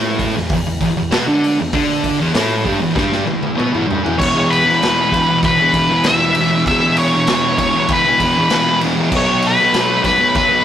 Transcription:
0.00 0.34 A2 loud
0.00 0.35 A3 loud
0.19 kick medium
0.19 open hi-hat medium
0.36 0.50 E2 medium
0.36 snare soft
0.49 0.66 E2 medium
0.49 kick loud
0.49 open hi-hat medium
0.67 0.81 E2 medium
0.81 0.96 E2 medium
0.81 kick medium
0.81 open hi-hat medium
0.97 1.11 E2 medium
1.11 1.25 B2 loud
1.11 1.25 B3 loud
1.11 snare loud
1.11 open hi-hat medium
1.27 1.56 D3 medium
1.27 1.57 D4 loud
1.44 open hi-hat medium
1.59 1.73 E2 medium
1.72 2.17 D3 loud
1.72 2.18 D4 loud
1.72 kick loud
1.72 open hi-hat medium
1.89 snare soft
2.04 kick medium
2.04 open hi-hat medium
2.19 2.33 E2 medium
2.19 2.34 E3 loud
2.33 2.63 A2 loud
2.33 2.64 A3 loud
2.33 snare loud
2.33 open hi-hat medium
2.65 2.79 G2 medium
2.65 2.80 G3 medium
2.65 kick medium
2.65 open hi-hat medium
2.81 2.93 E2 loud
2.81 2.95 E3 medium
2.94 3.24 G2 medium
2.94 3.25 G3 loud
2.94 kick loud
2.94 snare medium
3.12 snare medium
3.26 3.56 E2 medium
3.26 3.56 E3 loud
3.26 high tom medium
3.43 high tom medium
3.56 3.71 B2 medium
3.56 3.71 B3 loud
3.56 mid tom medium
3.72 3.87 E2 medium
3.72 3.87 E3 medium
3.72 mid tom medium
3.87 4.02 G2 medium
3.87 4.03 G3 medium
3.87 floor tom loud
4.04 4.17 E2 medium
4.04 4.18 E3 loud
4.04 floor tom loud
4.18 4.81 E2 medium
4.18 4.36 B2 loud
4.18 4.34 E3 loud
4.18 4.50 C#5 loud
4.18 kick loud
4.18 crash loud
4.34 4.67 B2 medium
4.34 4.65 E3 medium
4.50 5.38 B4 loud
4.50 ride medium
4.65 4.81 B2 medium
4.65 4.83 E3 medium
4.65 snare soft
4.81 5.11 E2 loud
4.81 5.12 B2 loud
4.81 5.15 E3 loud
4.81 snare loud
4.81 ride loud
5.12 5.58 E2 medium
5.12 5.30 B2 medium
5.12 5.26 E3 medium
5.12 kick medium
5.12 ride medium
5.27 5.60 B2 medium
5.27 5.57 E3 medium
5.43 6.07 B4 loud
5.43 kick loud
5.43 ride loud
5.58 5.75 B2 medium
5.58 5.77 E3 medium
5.73 6.03 E2 medium
5.73 5.91 B2 medium
5.73 kick medium
5.73 ride medium
5.78 5.88 E3 medium
5.89 6.05 B2 medium
5.89 6.06 E3 medium
6.04 6.36 E2 medium
6.04 6.38 B2 loud
6.04 6.39 E3 loud
6.04 6.63 E5 loud
6.04 snare loud
6.04 ride loud
6.35 6.66 E2 medium
6.35 ride medium
6.39 6.55 B2 medium
6.39 6.51 E3 medium
6.52 6.70 E3 medium
6.56 6.68 B2 medium
6.66 7.12 E2 loud
6.66 6.86 B2 loud
6.66 6.98 E5 loud
6.66 kick loud
6.66 ride loud
6.71 6.82 E3 loud
6.84 7.16 B2 medium
6.84 7.12 E3 medium
6.97 7.57 C#5 loud
6.97 ride medium
7.13 7.28 B2 medium
7.13 7.29 E3 medium
7.13 snare soft
7.27 7.57 E2 loud
7.27 7.59 B2 loud
7.27 7.61 E3 loud
7.27 snare loud
7.27 ride loud
7.58 8.04 E2 medium
7.58 7.76 B2 medium
7.58 7.90 C#5 medium
7.58 kick medium
7.58 ride medium
7.62 7.72 E3 medium
7.73 8.08 B2 medium
7.73 8.04 E3 medium
7.88 8.79 B4 medium
7.88 kick loud
7.88 ride loud
8.05 8.22 B2 medium
8.05 8.23 E3 medium
8.20 8.48 E2 medium
8.20 8.38 B2 medium
8.20 8.35 E3 medium
8.20 kick medium
8.20 ride medium
8.36 8.50 B2 medium
8.36 8.51 E3 medium
8.49 8.80 E2 loud
8.49 8.82 B2 loud
8.49 8.83 E3 loud
8.49 snare loud
8.49 ride loud
8.81 9.10 E2 medium
8.81 8.98 B2 medium
8.81 8.94 E3 medium
8.81 ride medium
8.95 9.09 B2 medium
8.95 9.09 E3 medium
9.10 9.57 B2 medium
9.10 9.30 F#3 loud
9.10 kick loud
9.10 crash loud
9.15 9.26 B3 loud
9.15 9.45 C#5 medium
9.27 9.58 B3 medium
9.31 9.62 F#3 medium
9.42 ride medium
9.47 10.02 B4 loud
9.59 9.76 B3 medium
9.59 snare soft
9.63 9.74 F#3 medium
9.73 10.01 B2 loud
9.73 10.04 F#3 loud
9.73 snare loud
9.73 ride loud
9.77 10.06 B3 loud
10.02 10.49 B2 medium
10.02 10.20 F#3 medium
10.02 10.35 B4 medium
10.02 kick medium
10.02 ride medium
10.07 10.17 B3 medium
10.18 10.51 F#3 medium
10.18 10.48 B3 medium
10.35 10.65 B4 loud
10.35 kick loud
10.35 ride loud
10.49 10.65 F#3 medium
10.49 10.65 B3 medium

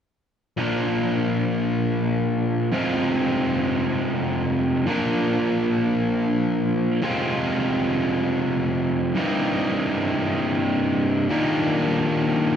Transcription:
0.57 2.70 A#2 soft
0.57 2.72 F3 soft
0.57 2.71 A#3 soft
0.57 2.71 D4 soft
0.57 2.74 F4 soft
0.57 2.72 A#4 soft
2.72 4.85 F2 medium
2.72 4.85 C3 soft
2.72 4.86 F3 soft
2.72 4.86 G#3 soft
2.72 4.86 C4 medium
2.72 4.86 F4 soft
4.87 6.99 A#2 soft
4.87 7.00 F3 medium
4.87 7.00 A#3 medium
4.87 7.00 D4 medium
4.87 7.00 F4 medium
4.87 7.01 A#4 medium
7.02 9.14 F2 medium
7.02 9.14 C3 medium
7.02 9.14 F3 medium
7.02 9.14 G#3 medium
7.02 9.15 C4 medium
7.02 9.15 F4 medium
9.15 11.28 C2 medium
9.15 11.28 G2 medium
9.15 11.28 C3 medium
9.15 11.28 G3 medium
9.15 11.31 A#3 medium
9.15 11.29 D#4 medium
11.29 12.56 D#2 medium
11.29 12.56 A#2 medium
11.29 12.56 D#3 medium
11.29 12.56 G3 medium
11.29 12.56 A#3 medium
11.29 12.56 D4 medium

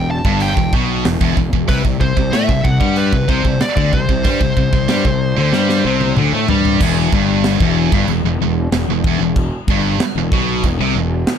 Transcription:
0.00 0.23 E1 medium
0.00 0.19 E2 medium
0.00 0.10 G5 loud
0.11 0.42 A5 medium
0.25 0.55 G1 medium
0.25 0.56 G2 medium
0.25 kick loud
0.40 0.72 G5 medium
0.40 open hi-hat medium
0.57 0.72 E1 medium
0.57 0.73 E2 medium
0.57 kick loud
0.73 1.03 B1 medium
0.73 1.05 B2 loud
0.73 kick loud
1.05 1.20 E1 medium
1.05 1.20 E2 medium
1.05 snare loud
1.05 open hi-hat medium
1.21 1.36 E1 loud
1.21 1.36 E2 loud
1.21 kick loud
1.37 1.52 E1 medium
1.37 1.52 E2 medium
1.37 kick medium
1.53 1.68 E1 medium
1.53 1.69 E2 medium
1.53 kick medium
1.69 1.84 C2 medium
1.69 1.84 C3 loud
1.69 1.77 B4 medium
1.69 kick loud
1.69 open hi-hat medium
1.85 2.00 C2 medium
1.85 2.00 C3 medium
1.85 kick medium
2.01 2.16 C2 medium
2.01 2.15 C3 medium
2.01 2.34 C5 medium
2.01 kick medium
2.17 2.32 C2 medium
2.17 2.33 C3 medium
2.17 kick medium
2.32 2.48 A2 loud
2.32 2.48 A3 medium
2.32 2.66 E5 loud
2.32 snare medium
2.32 open hi-hat medium
2.49 2.64 C2 medium
2.49 2.62 C3 medium
2.49 kick medium
2.63 2.80 C2 medium
2.63 2.80 C3 medium
2.63 2.98 F#5 medium
2.63 kick loud
2.80 3.11 G2 loud
2.80 3.12 G3 medium
2.80 kick loud
2.96 3.29 B4 medium
2.96 open hi-hat medium
3.12 3.28 C2 medium
3.12 3.27 C3 medium
3.12 kick loud
3.28 3.44 C2 medium
3.28 3.43 C3 loud
3.28 3.59 C5 medium
3.28 kick loud
3.44 3.60 C2 medium
3.44 3.60 C3 medium
3.44 kick medium
3.61 3.91 D5 medium
3.61 muted distorted electric guitar stroke medium
3.61 muted fingered electric bass stroke soft
3.61 snare loud
3.61 open hi-hat soft
3.76 3.92 D2 medium
3.76 3.92 D3 loud
3.76 kick loud
3.93 4.08 C2 medium
3.93 4.08 C3 medium
3.93 6.13 C5 medium
3.93 kick medium
4.09 4.24 C2 medium
4.09 4.25 C3 medium
4.09 kick medium
4.24 4.40 G2 loud
4.24 4.40 G3 loud
4.24 kick loud
4.24 open hi-hat medium
4.41 4.56 C2 medium
4.41 4.56 C3 medium
4.41 kick loud
4.57 4.72 C2 medium
4.57 4.72 C3 medium
4.57 kick medium
4.73 4.88 C2 medium
4.73 4.89 C3 medium
4.73 kick medium
4.89 5.04 G2 medium
4.89 5.04 G3 loud
4.89 snare loud
4.89 open hi-hat medium
5.05 5.35 C2 medium
5.05 5.31 C3 medium
5.05 kick medium
5.37 5.52 D2 medium
5.37 5.52 D3 loud
5.52 5.82 G2 medium
5.52 5.84 G3 medium
5.52 snare medium
5.69 snare medium
5.85 6.15 C2 medium
5.85 6.16 C3 loud
6.01 high tom medium
6.17 6.32 D2 medium
6.17 6.32 D3 loud
6.17 mid tom medium
6.33 6.48 A2 medium
6.33 6.48 A3 loud
6.48 6.79 G2 medium
6.48 6.80 G3 medium
6.48 floor tom medium
6.65 floor tom medium
6.80 7.10 E1 medium
6.80 7.12 E2 loud
6.80 kick loud
6.80 crash loud
6.80 china medium
7.12 7.57 G1 medium
7.12 7.60 G2 medium
7.12 kick loud
7.44 snare loud
7.44 china medium
7.60 7.90 E1 loud
7.60 7.92 E2 loud
7.60 kick loud
7.92 8.07 G1 medium
7.92 8.08 G2 loud
7.92 kick loud
8.08 8.23 E1 medium
8.08 8.23 E2 medium
8.08 china medium
8.24 8.39 E1 medium
8.24 8.40 E2 medium
8.41 8.70 E1 medium
8.41 8.66 E2 medium
8.72 8.87 E1 medium
8.72 8.87 E2 medium
8.72 snare loud
8.72 china medium
8.88 9.03 E1 medium
8.88 9.03 E2 medium
9.04 9.19 E1 medium
9.04 9.19 E2 medium
9.04 kick loud
9.21 9.50 E1 medium
9.21 9.46 E2 medium
9.36 kick loud
9.36 china medium
9.68 9.97 G1 loud
9.68 9.99 G2 medium
9.68 kick loud
10.00 muted distorted electric guitar stroke medium
10.00 muted fingered electric bass stroke soft
10.00 snare loud
10.00 china medium
10.16 10.30 E1 medium
10.16 10.32 E2 medium
10.32 10.61 B1 loud
10.32 10.63 B2 loud
10.32 kick loud
10.63 10.78 E1 medium
10.63 10.79 E2 medium
10.63 kick medium
10.63 china medium
10.79 10.95 C2 loud
10.79 10.94 C3 loud
10.95 11.25 E1 medium
10.95 11.21 E2 medium
11.27 snare loud
11.27 china medium

